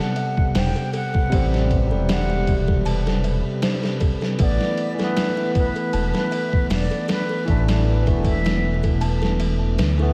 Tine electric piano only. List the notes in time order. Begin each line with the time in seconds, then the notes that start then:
Already playing: C3 G3 B3
1.30 C3 G3
1.34 C4
1.87 C3
1.91 G3
4.38 E3 A3
4.42 B3
4.95 E3
5.00 A3
5.04 B3
7.45 E3 A3
7.50 D4
8.03 E3
8.08 A3
8.12 B3
9.98 E3 A3
10.02 B3